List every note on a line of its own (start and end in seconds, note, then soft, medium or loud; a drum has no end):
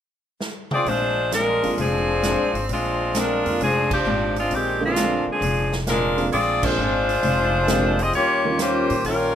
0.41 snare medium
0.71 0.86 C4 medium
0.71 0.86 F4 medium
0.71 0.86 G#4 medium
0.71 0.86 D5 medium
0.71 mid tom medium
0.85 1.58 A#1 medium
0.85 1.18 A#2 soft
0.85 1.19 G#3 soft
0.85 1.33 G#3 medium
0.85 1.19 C4 soft
0.85 1.33 D4 medium
0.85 1.20 D4 soft
0.85 1.33 F4 medium
0.85 1.33 C5 medium
0.85 open hi-hat soft
1.31 1.64 A#2 medium
1.31 1.64 G#3 soft
1.31 1.76 G#3 medium
1.31 1.65 C4 medium
1.31 1.65 D4 medium
1.31 1.76 D4 medium
1.31 1.76 F4 medium
1.31 1.76 A#4 loud
1.31 snare medium
1.31 closed hi-hat medium
1.63 1.77 G#1 medium
1.63 1.76 D3 medium
1.63 1.76 G#3 medium
1.63 1.76 A#3 medium
1.63 1.76 C4 medium
1.63 1.77 F4 medium
1.63 open hi-hat soft
1.77 2.34 F1 medium
1.77 2.10 A#2 soft
1.77 2.66 F3 medium
1.77 2.10 G#3 soft
1.77 2.11 C4 soft
1.77 2.66 C4 medium
1.77 2.11 D4 medium
1.77 2.66 G#4 medium
1.77 open hi-hat soft
1.81 2.66 D4 medium
2.22 2.55 A#2 medium
2.22 2.55 G#3 medium
2.22 2.56 C4 medium
2.22 2.56 D4 medium
2.22 snare medium
2.22 closed hi-hat soft
2.38 2.52 A#1 medium
2.53 2.68 G#1 medium
2.53 open hi-hat soft
2.68 3.41 A#1 medium
2.68 3.01 A#2 soft
2.68 3.01 G#3 soft
2.68 3.16 G#3 medium
2.68 3.02 C4 soft
2.68 3.16 C4 medium
2.68 3.02 D4 soft
2.68 3.16 D4 medium
2.68 3.16 F4 medium
2.68 open hi-hat soft
3.14 3.46 A#2 medium
3.14 3.47 G#3 medium
3.14 3.61 G#3 medium
3.14 3.47 C4 medium
3.14 3.47 D4 medium
3.14 3.61 D4 medium
3.14 3.61 F4 medium
3.14 3.61 A#4 medium
3.14 snare medium
3.14 closed hi-hat medium
3.45 3.59 F2 medium
3.45 3.58 D3 medium
3.45 3.58 G#3 soft
3.45 3.58 A#3 soft
3.45 3.59 C4 soft
3.45 3.59 F4 medium
3.45 open hi-hat soft
3.60 4.02 F1 medium
3.60 3.92 A#2 soft
3.60 3.90 F3 medium
3.60 3.92 G#3 soft
3.60 3.93 C4 soft
3.60 3.90 C4 medium
3.60 3.93 D4 soft
3.60 3.90 D4 medium
3.60 3.90 G#4 medium
3.60 open hi-hat soft
3.91 4.34 F3 medium
3.91 4.34 C4 medium
3.91 4.34 D4 medium
3.91 4.34 G4 medium
3.91 kick medium
3.91 crash medium
4.05 4.48 G#1 medium
4.05 4.37 A#2 medium
4.05 4.38 G#3 medium
4.05 4.38 C4 medium
4.05 4.38 D4 medium
4.36 4.52 G#3 medium
4.36 4.52 C4 medium
4.36 4.52 D4 medium
4.36 4.52 F4 medium
4.36 open hi-hat soft
4.50 5.23 A#1 medium
4.50 4.83 A#2 soft
4.50 4.83 G#3 soft
4.50 4.84 C4 soft
4.50 4.84 D4 soft
4.50 open hi-hat soft
4.54 4.83 D#3 medium
4.54 4.83 G#3 medium
4.54 4.83 C4 medium
4.54 4.83 G4 medium
4.80 5.38 D3 medium
4.80 5.38 G#3 medium
4.80 5.38 A#3 medium
4.80 5.39 C4 medium
4.80 5.39 F4 medium
4.85 5.26 G#3 medium
4.85 5.26 C4 medium
4.85 5.26 D4 medium
4.85 5.26 F4 medium
4.96 5.28 A#2 medium
4.96 5.29 G#3 medium
4.96 5.29 C4 medium
4.96 5.30 D4 medium
4.96 snare medium
4.96 closed hi-hat medium
5.27 muted upright bass stroke soft
5.31 5.75 F3 medium
5.31 5.75 C4 medium
5.31 5.75 D4 medium
5.31 5.75 G#4 medium
5.41 6.28 F1 medium
5.41 5.74 A#2 soft
5.41 5.74 G#3 soft
5.41 5.75 C4 soft
5.41 5.75 D4 soft
5.41 open hi-hat soft
5.72 snare medium
5.87 6.20 A#2 medium
5.87 6.20 G#3 medium
5.87 6.27 G#3 medium
5.87 6.20 C4 medium
5.87 6.20 D4 medium
5.87 6.27 D4 medium
5.87 6.27 F4 medium
5.87 6.27 A#4 medium
5.87 snare medium
5.87 closed hi-hat soft
6.17 6.31 D3 medium
6.17 6.31 G#3 medium
6.17 6.31 A#3 medium
6.17 6.31 C4 medium
6.17 6.31 F4 medium
6.17 open hi-hat soft
6.31 6.74 A#1 medium
6.31 6.64 A#2 soft
6.31 6.65 G#3 soft
6.31 6.63 C4 medium
6.31 6.65 C4 soft
6.31 6.66 D4 medium
6.31 6.63 F4 medium
6.31 6.63 G#4 medium
6.31 6.34 C#5 medium
6.31 6.63 D5 medium
6.31 open hi-hat soft
6.63 6.76 D3 medium
6.63 6.77 G#3 medium
6.63 8.00 G#3 medium
6.63 6.77 A#3 soft
6.63 6.77 C4 medium
6.63 8.00 D4 medium
6.63 6.77 F4 medium
6.63 8.00 F4 medium
6.63 8.00 C5 medium
6.63 kick medium
6.63 crash medium
6.78 7.20 G#1 medium
6.78 7.10 A#2 medium
6.78 7.11 G#3 medium
6.78 7.11 C4 medium
6.78 7.11 D4 medium
7.09 open hi-hat soft
7.22 8.10 F1 medium
7.22 7.55 A#2 soft
7.22 7.56 G#3 medium
7.22 7.56 C4 soft
7.22 7.56 D4 soft
7.22 open hi-hat soft
7.67 8.01 A#2 medium
7.67 7.96 D3 medium
7.67 7.96 G#3 medium
7.67 8.01 G#3 medium
7.67 7.96 A#3 medium
7.67 7.97 C4 medium
7.67 8.01 C4 medium
7.67 8.02 D4 medium
7.67 7.97 G4 medium
7.67 snare medium
7.67 closed hi-hat soft
7.99 8.15 C4 medium
7.99 8.15 F4 medium
7.99 8.15 G#4 medium
7.99 8.15 D#5 medium
7.99 open hi-hat soft
8.13 8.86 D#2 medium
8.13 8.46 D#3 soft
8.13 8.47 G3 soft
8.13 8.57 A#3 medium
8.13 8.47 C#4 soft
8.13 8.57 F4 medium
8.13 8.47 F4 soft
8.13 8.57 G4 medium
8.13 8.57 C#5 medium
8.13 open hi-hat soft
8.45 9.02 D#3 medium
8.45 9.02 G3 medium
8.45 9.02 A#3 medium
8.45 9.02 C#4 medium
8.45 9.03 F4 medium
8.59 8.92 D#3 medium
8.59 8.92 G3 medium
8.59 9.06 A#3 medium
8.59 8.93 C#4 medium
8.59 8.93 F4 medium
8.59 9.05 F4 medium
8.59 9.06 G4 medium
8.59 9.06 C5 medium
8.59 snare medium
8.59 closed hi-hat medium
8.90 9.04 A#2 medium
8.90 open hi-hat soft
9.04 9.35 A#1 medium
9.04 9.35 D#3 soft
9.04 9.35 G3 soft
9.04 9.35 G3 medium
9.04 9.35 C#4 medium
9.04 9.35 C#4 soft
9.04 9.35 F4 medium
9.04 9.35 F4 soft
9.04 9.35 A#4 medium
9.04 open hi-hat soft